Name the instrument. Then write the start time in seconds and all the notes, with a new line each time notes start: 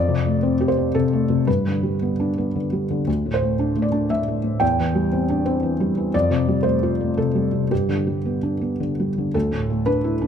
felt piano
Already playing: F2 D5
0.09 C3
0.26 A3
0.43 C4
0.61 G4
0.68 C5
0.77 C4
0.95 C3 A4
1.13 A3
1.30 C3
1.47 G2 B4
1.67 D3
1.83 G3
2.02 B3
2.20 D4
2.38 B3
2.56 D3
2.72 G3
2.90 D3
3.07 D2
3.26 A2
3.34 C5
3.43 A3
3.59 D4
3.76 A3
3.82 D5
3.92 D4
4.10 A2 E5
4.28 A3
4.44 A2
4.60 E2 G5
4.80 E3
4.95 G3
5.12 C4
5.30 D4
5.46 C4
5.63 E3
5.80 G3
5.97 E3
6.14 F2 D5
6.31 C3
6.48 G3
6.63 A3 C5
6.83 F4
7.01 A3
7.17 C3 A4
7.35 G3
7.53 C3
7.71 G2 G4
7.89 D3
8.07 G3
8.25 B3
8.43 D4
8.61 B3
8.80 D3
9.00 G3
9.18 D3
9.34 D2 A4
9.52 A2
9.70 A3
9.86 D4 B4
10.04 E4
10.22 D4